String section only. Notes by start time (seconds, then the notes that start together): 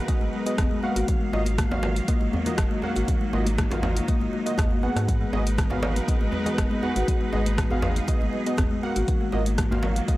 Already playing: G#3 D#4 A#4 B4
1.08 D#3 F#3 A#3 F5
3.08 D#4
5.08 G#3 D#4 A#4 B4
7.08 G#4
9.09 D#3 F#3 A#3